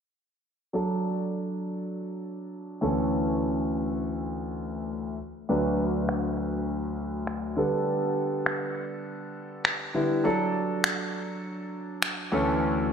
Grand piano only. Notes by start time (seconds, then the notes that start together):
0.73 F#3 D4 A4
2.81 D2 E3 C#4 A4
5.49 D2 F#3 D4 B4
7.57 D3 G3 B3 A4
9.94 D3 G3 B3 E4
10.24 F#3 D4 A4
12.32 D2 E3 C#4 A4